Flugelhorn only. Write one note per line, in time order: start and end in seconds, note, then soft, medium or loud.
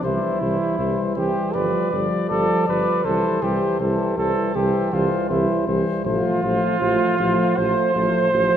0.05 1.00 E4 medium
1.17 1.56 G4 medium
1.55 2.04 B4 medium
2.30 2.65 A4 medium
2.68 3.07 B4 medium
3.05 3.44 A4 medium
3.43 3.80 G4 medium
3.81 4.17 A4 medium
4.18 4.57 A4 medium
4.56 4.95 G4 medium
4.93 5.30 F4 medium
5.31 5.67 E4 medium
6.05 7.59 F4 medium
7.57 8.57 C5 medium